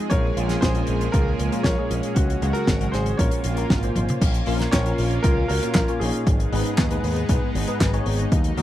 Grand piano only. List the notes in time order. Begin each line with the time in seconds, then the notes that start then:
0.10 A#4 C#5
0.61 G#4 C5
1.12 F4 A#4
1.63 A#4 C#5
2.15 C#4 F#4
2.53 F#4 A#4
2.92 G#4 C5
3.17 A#4 C#5
4.71 A#4 C#5
5.23 F4 A#4
5.48 F#4 A#4
5.74 F4 A#4
6.00 D#4 G#4